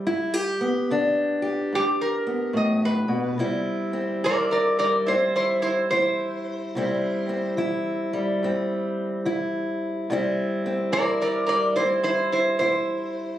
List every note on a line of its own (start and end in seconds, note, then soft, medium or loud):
0.00 0.60 G3 medium
0.07 0.84 G2 medium
0.07 0.34 E4 medium
0.34 1.41 G4 medium
0.61 2.25 B3 medium
0.91 1.67 D3 medium
0.91 3.37 D4 medium
1.42 3.36 G4 medium
1.73 2.50 G2 medium
1.73 2.01 G4 loud
2.01 2.55 A#4 medium
2.27 3.36 B3 medium
2.53 3.08 A2 medium
2.53 2.83 D#5 medium
2.85 3.38 B4 medium
3.08 3.37 B2 medium
3.38 4.16 C3 medium
3.38 4.78 G3 medium
3.38 3.93 C4 medium
3.38 4.26 E4 medium
3.93 5.09 C4 medium
4.24 5.02 E3 medium
4.24 5.92 E4 medium
4.24 4.50 A#4 medium
4.24 4.51 D5 loud
4.51 4.77 A#4 medium
4.51 4.78 D5 medium
4.79 6.76 G3 medium
4.79 5.05 A#4 medium
4.79 5.06 D5 medium
5.06 5.85 G2 medium
5.06 6.76 C4 medium
5.06 5.32 E4 medium
5.06 5.34 C5 medium
5.36 5.61 E4 medium
5.36 5.61 C5 medium
5.62 5.88 E4 medium
5.62 5.89 C5 medium
5.91 6.69 E3 medium
5.91 6.77 E4 medium
5.91 7.54 C5 loud
6.75 7.52 C3 medium
6.75 8.13 G3 medium
6.75 7.29 C4 medium
6.75 7.58 E4 medium
7.29 8.44 C4 medium
7.57 8.35 E3 medium
7.57 9.26 E4 medium
8.13 10.10 G3 medium
8.43 9.20 G2 medium
8.43 10.11 C4 medium
9.25 10.03 E3 medium
9.25 10.12 E4 medium
10.10 10.87 C3 medium
10.10 11.48 G3 medium
10.10 10.65 C4 medium
10.10 10.93 E4 medium
10.66 11.78 C4 medium
10.92 11.71 E3 medium
10.92 12.60 E4 medium
10.92 11.20 A#4 medium
10.92 11.20 D5 loud
11.21 11.45 A#4 medium
11.21 11.48 D5 medium
11.46 13.38 G3 medium
11.46 11.74 A#4 medium
11.46 11.76 D5 medium
11.76 12.55 G2 medium
11.76 13.38 C4 medium
11.76 12.02 E4 medium
11.76 12.03 C5 medium
12.03 12.30 E4 medium
12.03 12.32 C5 loud
12.32 12.59 E4 medium
12.32 12.58 C5 medium
12.59 13.38 E3 medium
12.59 13.38 E4 medium
12.59 13.38 C5 medium